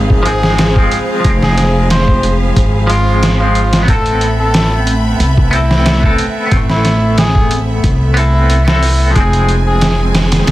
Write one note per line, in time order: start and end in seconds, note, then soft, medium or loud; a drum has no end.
0.00 0.88 G#1 medium
0.00 0.19 F3 medium
0.00 0.22 G#3 medium
0.00 0.24 C4 medium
0.00 10.51 C4 medium
0.00 3.84 G#4 medium
0.00 3.84 C5 medium
0.00 3.84 F5 medium
0.00 10.51 B5 medium
0.10 kick medium
0.23 0.70 F3 medium
0.23 0.71 G#3 medium
0.23 0.86 G#4 loud
0.23 closed hi-hat medium
0.28 0.73 C4 loud
0.43 snare medium
0.58 snare loud
0.58 closed hi-hat loud
0.73 1.18 F3 loud
0.73 1.20 G#3 medium
0.73 kick medium
0.78 1.22 C4 loud
0.91 closed hi-hat medium
1.20 2.83 F3 medium
1.24 2.53 F1 loud
1.24 2.85 G#3 medium
1.24 kick loud
1.24 closed hi-hat medium
1.29 2.88 C4 loud
1.43 1.86 G#4 loud
1.43 snare medium
1.58 snare medium
1.58 closed hi-hat medium
1.90 2.36 C5 loud
1.90 snare loud
1.90 closed hi-hat medium
2.08 kick loud
2.23 closed hi-hat medium
2.56 3.85 G#1 medium
2.56 kick loud
2.56 closed hi-hat medium
2.87 3.34 F3 medium
2.87 3.35 G#3 medium
2.87 3.35 F4 loud
2.87 closed hi-hat medium
2.92 3.37 C4 loud
3.23 snare loud
3.23 closed hi-hat medium
3.37 3.83 F3 loud
3.37 3.84 G#3 medium
3.37 3.84 F4 loud
3.42 3.82 C4 loud
3.55 closed hi-hat medium
3.73 snare loud
3.73 closed hi-hat medium
3.83 5.46 B3 medium
3.88 5.17 A1 loud
3.88 9.11 A3 medium
3.88 5.49 C4 medium
3.88 4.34 A4 loud
3.88 9.11 E5 medium
3.88 6.49 B5 medium
3.88 kick loud
3.88 closed hi-hat medium
3.93 5.51 A4 medium
4.06 closed hi-hat soft
4.21 closed hi-hat medium
4.40 4.83 A4 loud
4.54 snare loud
4.54 closed hi-hat medium
4.87 closed hi-hat medium
5.20 6.16 C2 medium
5.20 closed hi-hat medium
5.37 kick medium
5.51 5.98 B3 medium
5.51 5.99 C4 medium
5.51 6.13 E4 loud
5.51 closed hi-hat medium
5.56 6.01 A4 loud
5.71 snare medium
5.86 snare loud
5.86 closed hi-hat medium
6.01 6.45 B3 medium
6.01 6.48 C4 medium
6.01 kick medium
6.05 6.49 A4 loud
6.18 closed hi-hat medium
6.47 8.10 B3 medium
6.51 7.81 A1 medium
6.51 8.13 C4 medium
6.51 kick loud
6.51 closed hi-hat medium
6.57 8.15 A3 loud
6.70 7.14 E4 medium
6.70 snare soft
6.85 snare medium
6.85 closed hi-hat medium
7.18 7.63 G#4 loud
7.18 snare loud
7.18 closed hi-hat medium
7.35 kick loud
7.51 closed hi-hat medium
7.84 9.12 C2 loud
7.84 kick loud
7.84 closed hi-hat medium
8.14 8.61 B3 medium
8.14 8.63 C4 medium
8.14 8.62 E4 loud
8.14 closed hi-hat medium
8.19 8.64 A4 loud
8.50 closed hi-hat medium
8.64 9.10 B3 loud
8.64 9.12 C4 loud
8.64 9.11 E4 medium
8.64 snare loud
8.69 9.13 A4 loud
8.83 open hi-hat medium
9.10 10.51 F3 medium
9.15 10.44 F1 loud
9.15 10.51 G#3 medium
9.15 10.51 G#4 medium
9.15 9.61 G#4 loud
9.15 10.51 G#5 medium
9.15 kick loud
9.15 closed hi-hat medium
9.20 10.51 C4 loud
9.33 closed hi-hat soft
9.49 closed hi-hat medium
9.67 10.10 G#4 loud
9.81 snare loud
9.81 closed hi-hat medium
10.15 snare loud
10.15 closed hi-hat medium
10.32 snare loud
10.32 closed hi-hat medium
10.47 10.51 G#1 medium
10.47 snare loud
10.47 closed hi-hat medium